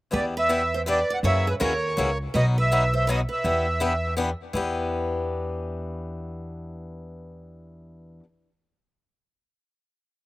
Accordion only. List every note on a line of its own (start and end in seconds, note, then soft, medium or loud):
0.16 0.25 D5 medium
0.39 0.75 E5 loud
0.77 0.82 E5 medium
0.90 1.12 D5 medium
1.14 1.19 F#5 medium
1.27 1.49 E5 medium
1.50 1.56 B4 medium
1.63 2.18 C#5 medium
2.36 2.46 D#5 medium
2.60 2.94 E5 loud
2.96 3.09 E5 medium
3.10 3.20 D#5 medium
3.32 4.14 E5 medium